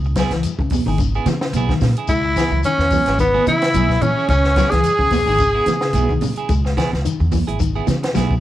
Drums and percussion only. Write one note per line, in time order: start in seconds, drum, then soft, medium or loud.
0.04 shekere soft
0.15 kick medium
0.15 snare medium
0.15 closed hi-hat medium
0.15 shekere medium
0.31 snare soft
0.31 closed hi-hat medium
0.31 shekere soft
0.43 closed hi-hat medium
0.43 shekere medium
0.59 kick medium
0.59 shekere soft
0.70 kick medium
0.70 open hi-hat medium
0.70 high conga medium
0.70 low conga medium
0.70 shekere medium
0.89 shekere soft
0.98 kick medium
0.98 closed hi-hat medium
0.98 shekere medium
1.15 shekere soft
1.26 snare soft
1.26 closed hi-hat soft
1.26 high conga loud
1.26 shekere medium
1.41 snare medium
1.41 shekere soft
1.53 closed hi-hat medium
1.53 high conga medium
1.53 shekere medium
1.69 kick medium
1.69 snare soft
1.69 shekere soft
1.80 snare soft
1.80 open hi-hat medium
1.80 high conga medium
1.80 low conga medium
1.80 shekere medium
1.96 closed hi-hat medium
1.96 shekere soft
2.08 kick medium
2.08 closed hi-hat medium
2.08 shekere medium
2.23 shekere soft
2.36 kick medium
2.36 snare medium
2.36 closed hi-hat medium
2.36 shekere medium
2.51 low conga medium
2.51 shekere soft
2.63 closed hi-hat medium
2.63 shekere medium
2.79 snare soft
2.79 shekere soft
2.90 kick medium
2.90 open hi-hat medium
2.90 high conga medium
2.90 low conga medium
2.90 shekere medium
3.06 snare soft
3.06 closed hi-hat soft
3.06 shekere soft
3.19 kick medium
3.19 closed hi-hat medium
3.19 shekere medium
3.34 high conga medium
3.34 shekere soft
3.46 closed hi-hat soft
3.46 high conga medium
3.46 shekere medium
3.61 snare medium
3.61 closed hi-hat medium
3.61 shekere soft
3.73 closed hi-hat medium
3.73 high conga medium
3.73 shekere loud
3.89 kick medium
3.89 snare soft
3.89 shekere soft
4.01 closed hi-hat medium
4.01 high conga medium
4.01 low conga medium
4.01 shekere medium
4.19 shekere soft
4.28 kick medium
4.28 closed hi-hat medium
4.28 shekere medium
4.44 snare soft
4.44 shekere soft
4.56 kick medium
4.56 snare medium
4.56 closed hi-hat medium
4.56 shekere medium
4.71 snare soft
4.71 closed hi-hat medium
4.71 low conga medium
4.71 shekere soft
4.84 closed hi-hat medium
4.84 shekere medium
4.99 kick medium
4.99 shekere soft
5.10 kick medium
5.10 snare soft
5.10 open hi-hat medium
5.10 high conga medium
5.10 low conga medium
5.10 shekere medium
5.28 shekere soft
5.38 kick medium
5.38 closed hi-hat medium
5.38 shekere medium
5.56 shekere soft
5.66 snare soft
5.66 closed hi-hat soft
5.66 high conga medium
5.66 shekere medium
5.81 snare medium
5.81 shekere soft
5.93 closed hi-hat medium
5.93 high conga medium
5.93 shekere medium
6.09 kick medium
6.09 shekere soft
6.21 open hi-hat medium
6.21 high conga medium
6.21 low conga medium
6.21 shekere medium
6.36 closed hi-hat medium
6.36 shekere soft
6.49 kick medium
6.49 closed hi-hat medium
6.49 shekere medium
6.66 snare soft
6.66 shekere soft
6.77 kick medium
6.77 snare medium
6.77 closed hi-hat medium
6.77 shekere medium
6.94 snare soft
6.94 shekere soft
7.05 closed hi-hat medium
7.05 shekere medium
7.20 shekere soft
7.32 kick medium
7.32 open hi-hat medium
7.32 high conga medium
7.32 low conga medium
7.32 shekere medium
7.48 closed hi-hat soft
7.48 shekere soft
7.59 kick medium
7.59 closed hi-hat medium
7.59 shekere medium
7.75 shekere soft
7.87 snare soft
7.87 closed hi-hat soft
7.87 high conga loud
7.87 shekere medium
8.03 snare medium
8.03 closed hi-hat medium
8.03 shekere soft
8.14 snare soft
8.14 closed hi-hat medium
8.14 high conga medium
8.14 shekere medium
8.31 kick medium
8.31 shekere soft